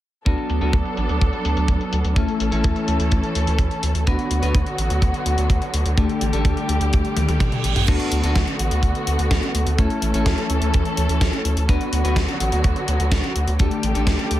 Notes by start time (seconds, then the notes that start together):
0.25 D2 F#3 B3 D4 F#4 A4, kick, closed hi-hat
0.38 closed hi-hat
0.50 D2, closed hi-hat
0.61 D2 B3 D4 F#4 A4, closed hi-hat
0.73 D2, kick, closed hi-hat
0.85 closed hi-hat
0.97 A1, closed hi-hat
1.09 D2, closed hi-hat
1.21 D2, kick, closed hi-hat
1.33 closed hi-hat
1.45 D2, closed hi-hat
1.57 D2, closed hi-hat
1.68 D2, kick, closed hi-hat
1.81 closed hi-hat
1.93 D2, closed hi-hat
2.04 D2, closed hi-hat
2.16 D2 E3 A3 C#4 E4 A4, kick, closed hi-hat
2.28 closed hi-hat
2.40 A1, closed hi-hat
2.52 A1 A3 C#4 E4 A4, closed hi-hat
2.64 D2, kick, closed hi-hat
2.76 closed hi-hat
2.88 D2, closed hi-hat
3.00 D2, closed hi-hat
3.12 D2, kick, closed hi-hat
3.23 closed hi-hat
3.35 D2, closed hi-hat
3.47 D2, closed hi-hat
3.59 D2, kick, closed hi-hat
3.71 closed hi-hat
3.83 D2, closed hi-hat
3.95 D2, closed hi-hat
4.07 D2 D3 F#3 B3 D4 F#4 B4, kick, closed hi-hat
4.19 closed hi-hat
4.31 D2, closed hi-hat
4.42 D2 B3 D4 F#4 B4, closed hi-hat
4.55 D2, kick, closed hi-hat
4.66 closed hi-hat
4.78 A1, closed hi-hat
4.90 D2, closed hi-hat
5.02 D2, kick, closed hi-hat
5.14 closed hi-hat
5.26 D2, closed hi-hat
5.38 D2, closed hi-hat
5.50 D2, kick, closed hi-hat
5.62 closed hi-hat
5.74 D2, closed hi-hat
5.86 D2, closed hi-hat
5.97 D2 G3 A3 D4 G4 A4, kick, closed hi-hat
6.09 closed hi-hat
6.21 A1, closed hi-hat
6.33 A1 A3 D4 G4 A4, closed hi-hat
6.45 D2, kick, closed hi-hat
6.57 closed hi-hat
6.69 D2, closed hi-hat
6.81 D2, closed hi-hat
6.93 D2, kick, closed hi-hat, reverse cymbal
7.05 closed hi-hat
7.17 D2, closed hi-hat, high tom
7.28 D2, closed hi-hat, high tom
7.40 A1, kick, closed hi-hat, mid tom
7.52 closed hi-hat, mid tom
7.64 A1, closed hi-hat
7.76 A1, closed hi-hat, mid tom
7.88 D2 D3 A3 B3 D4 F#4 A4, kick, closed hi-hat, crash
8.00 closed hi-hat
8.12 D2, closed hi-hat
8.23 D2 B3 D4 F#4 A4, closed hi-hat
8.36 D2, kick, snare, closed hi-hat
8.47 closed hi-hat
8.59 A1, closed hi-hat
8.71 D2, closed hi-hat
8.83 D2, kick, closed hi-hat
8.95 closed hi-hat
9.07 D2, closed hi-hat
9.19 D2, closed hi-hat
9.31 D2, kick, snare, closed hi-hat
9.43 closed hi-hat
9.54 D2, closed hi-hat
9.66 D2, closed hi-hat
9.78 D2 E3 A3 C#4 E4 A4, kick, closed hi-hat
9.90 closed hi-hat
10.02 A1, closed hi-hat
10.14 A1 A3 C#4 E4 A4, closed hi-hat
10.26 D2, kick, snare, closed hi-hat
10.38 closed hi-hat
10.50 D2, closed hi-hat
10.62 D2, closed hi-hat
10.74 D2, kick, closed hi-hat
10.85 closed hi-hat
10.97 D2, closed hi-hat
11.09 D2, closed hi-hat
11.21 D2, kick, snare, closed hi-hat
11.33 closed hi-hat
11.45 D2, closed hi-hat
11.57 D2, closed hi-hat
11.69 D2 D3 F#3 B3 D4 F#4 B4, kick, closed hi-hat
11.81 closed hi-hat
11.92 D2, closed hi-hat
12.04 D2 B3 D4 F#4 B4, closed hi-hat
12.16 D2, kick, snare, closed hi-hat
12.28 closed hi-hat
12.40 A1, closed hi-hat
12.52 D2, closed hi-hat
12.64 D2, kick, closed hi-hat
12.76 closed hi-hat
12.88 D2, closed hi-hat
13.00 D2, closed hi-hat
13.12 D2, kick, snare, closed hi-hat
13.24 closed hi-hat
13.36 D2, closed hi-hat
13.48 D2, closed hi-hat
13.59 D2 D3 G3 A3 D4 G4 A4, kick, closed hi-hat
13.71 closed hi-hat
13.83 A1, closed hi-hat
13.95 A1 A3 D4 G4 A4, closed hi-hat
14.07 D2, kick, snare, closed hi-hat
14.19 closed hi-hat
14.31 D2, closed hi-hat